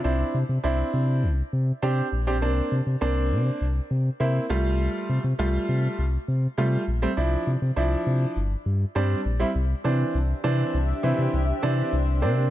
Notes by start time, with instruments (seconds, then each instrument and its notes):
0.04 sub bass C2, grand piano C4 D4 E4
0.34 sub bass C3
0.49 sub bass C3
0.63 sub bass C2, grand piano C4 D4 E4
0.93 sub bass C3
1.23 sub bass C2
1.53 sub bass C3
1.82 sub bass C3, grand piano C4 D4 G4
2.12 sub bass A#1
2.27 grand piano C4 D4 G4
2.42 sub bass C2, grand piano A#3 C4 D4
2.71 sub bass C3
2.86 sub bass C3
3.01 sub bass C2, grand piano A#3 C4 D4
3.31 sub bass C3
3.61 sub bass C2
3.90 sub bass C3
4.20 sub bass C3, grand piano A#3 C4 E4
4.50 sub bass C2, grand piano G3 A3 F4
5.09 sub bass C3
5.24 sub bass C3
5.39 sub bass C2, grand piano G3 A3 F4
5.68 sub bass C3
5.98 sub bass C2
6.28 sub bass C3
6.58 sub bass C3, grand piano G3 A3 F4
6.87 sub bass A#1
7.02 grand piano G3 A3 C4
7.17 sub bass C2, grand piano F3 D4 E4
7.47 sub bass C3
7.62 sub bass C3
7.76 sub bass C2, grand piano F3 D4 E4
8.06 sub bass C3
8.36 sub bass G1
8.66 sub bass G2
8.95 sub bass G2, grand piano G3 C4 D4
9.25 sub bass A#1
9.39 grand piano G3 C4 E4
9.55 sub bass C2, ambient pad D4 G4 C5 E5
9.84 sub bass C3, grand piano E3 C4 D4
10.14 sub bass C2
10.44 sub bass C3, grand piano E3 C4 D4
10.74 sub bass C2
11.03 sub bass C3, grand piano E3 C4 E4
11.18 sub bass C3
11.33 sub bass C2
11.62 sub bass C3, grand piano E3 C4 D4
11.92 sub bass C2, ambient pad D4 A#4 F5
12.22 sub bass C3, grand piano A#3 C4 D4